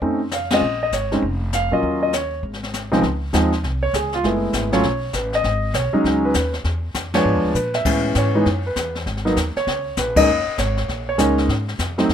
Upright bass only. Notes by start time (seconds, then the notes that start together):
0.02 F2
0.61 A#1
0.92 G#1
1.22 F1
1.72 A#2
1.83 D#2
2.43 G#1
2.92 C2
3.03 C#2
3.33 D#2
3.63 C2
3.93 C#2
4.23 F#1
4.53 G#1
4.83 B1
5.13 A1
5.44 G#1
5.74 B1
5.94 muted upright bass stroke
6.04 C#2
6.34 D#2
6.64 E2
6.94 F2
7.25 G#2
7.35 E2
7.44 D2
7.54 A#2
7.85 A2
8.15 G#2
8.46 F#2
8.76 E2
9.06 G#1
9.36 D#2
9.56 muted upright bass stroke
9.67 C#2
9.97 A#1
10.28 F#1
10.47 muted upright bass stroke
10.58 G#1
10.88 A#1
11.18 C#2
11.48 G#2
11.79 F2
12.09 F#2